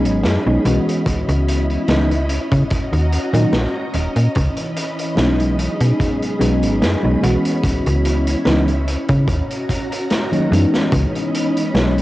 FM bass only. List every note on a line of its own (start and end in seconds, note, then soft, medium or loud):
0.05 0.25 G#1 loud
0.24 0.38 F#2 medium
0.46 0.58 B1 medium
0.65 0.79 B1 loud
1.06 1.24 C#2 soft
1.29 1.78 C#2 medium
1.88 2.39 C#2 medium
2.52 2.64 C#3 medium
2.93 3.18 D#2 medium
3.34 3.46 A#2 loud
3.53 3.67 A#1 medium
3.94 4.08 D#1 medium
4.16 4.28 A#2 medium
4.36 4.50 C#2 medium
5.18 5.68 B1 medium
5.81 5.93 B2 medium
6.41 6.64 B1 medium
6.63 6.84 G#1 loud
6.82 6.96 F#2 medium
7.04 7.16 B1 medium
7.23 7.37 B1 loud
7.63 7.81 C#2 soft
7.87 8.36 C#2 medium
8.46 8.97 C#2 medium
9.09 9.29 C#3 medium
9.28 9.42 D#2 medium
10.52 10.66 F#2 medium
10.92 11.07 C#2 loud
11.74 12.02 B1 medium